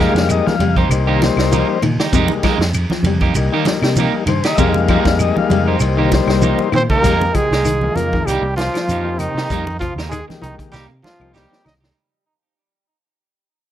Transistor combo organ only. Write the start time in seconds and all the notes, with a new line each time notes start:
Already playing: G3 G#3 A#3 D#4 F5
0.31 D#5
0.47 F5
0.78 C5
0.90 G3 A#3 D#4
1.24 C5
2.12 G3 G#3 A#3 D#4
3.35 G3 A#3 D#4
4.29 C5
4.47 D#5
4.55 G3 G#3 A#3 D#4 E5
4.60 F5
5.21 D#5
5.38 F5
5.68 C5
5.80 G3 A#3 D#4
6.14 C5
7.04 G#3 A#3 D#4 G4
7.81 G#3 A#3 D#4 F4
9.03 A#3 C4 D#4 G4
10.10 G#3 A#3 D#4 G4
10.28 G#3 A#3 D#4 G4
11.19 A#3 C4 D#4 G4